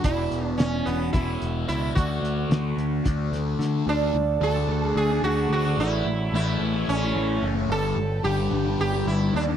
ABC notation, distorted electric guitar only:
X:1
M:7/8
L:1/16
Q:1/4=110
K:Dlyd
V:1 name="Distorted electric guitar" clef=bass
[E,,B,,E,]8 [E,,B,,E,]6 | [D,A,D]8 [D,A,D]6 | [D,A,D]4 [D,A,D] [A,D] [D,A,D] [A,D]2 [A,D] [D,A,D]2 [D,A,D] [A,D] | [A,,E,A,]4 [A,,E,A,] [E,A,] [A,,E,A,] [E,A,]2 [E,A,] [A,,E,A,]2 [A,,E,A,] [E,A,] |
[=G,,D,=G,]4 [G,,D,G,] [D,G,] [G,,D,G,] [D,G,]2 [D,G,] [G,,D,G,]2 [G,,D,G,] [D,G,] |]